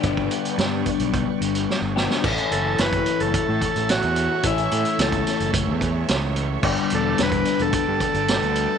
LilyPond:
<<
  \new Staff \with { instrumentName = "String machine" } { \time 4/4 \key a \mixolydian \tempo 4 = 109 <b' d'' g'' cis'''>1 | <a' cis'' e'' cis'''>1~ | <a' cis'' e'' cis'''>1 | <b' d'' g'' d'''>1 | }
  \new Staff \with { instrumentName = "Transistor combo organ" } { \time 4/4 \key a \mixolydian r1 | r8 a'8 b'8. a'16 a'4 fis'4 | e'4 a'4 r2 | r8 a'8 b'8. a'16 a'2 | }
  \new Staff \with { instrumentName = "Clean electric guitar" } { \time 4/4 \key a \mixolydian <g, d g b d' g'>2.~ <g, d g b d' g'>8 <g, d g b d' g'>8 | <a, e a cis' a'>1 | <a, e a cis' a'>1 | <g, d g b d' g'>1 | }
  \new Staff \with { instrumentName = "Fingered electric bass" } { \clef bass \time 4/4 \key a \mixolydian g,,8 r8 g,8 r16 b,,8 r16 g,,8 r16 g,,8 r16 | a,,16 r16 fis,,8 fis,,8 r16 fis,,16 r16 a,16 r16 a,,8 e,8 r16 | a,,8 a,16 r16 cis,8 r16 fis,,8 e,8. cis,4 | g,,16 r16 e,,8 e,,8 r16 e,,16 r16 g,16 r16 g,,8 d,8 r16 | }
  \new DrumStaff \with { instrumentName = "Drums" } \drummode { \time 4/4 <hh bd>16 bd16 hh16 hh16 <hh sn>8 <hh bd>16 hh16 <hh bd>8 hh16 hh16 sn8 sn16 sn16 | <cymc bd>16 hh16 hh8 <hh sn>16 <hh bd>16 hh16 hh16 <hh bd>8 <hh bd>16 hh16 <hh sn>16 hh16 hh8 | <hh bd>16 hh16 hh16 hh16 <hh sn>16 <hh bd>16 <hh sn>16 hh16 <hh bd>8 <hh bd>8 <hh sn>8 hh8 | <cymc bd>16 hh16 hh8 <hh sn>16 <hh bd>16 <hh sn>16 hh16 <hh bd>8 <hh bd>16 hh16 <hh sn>16 hh16 hh8 | }
>>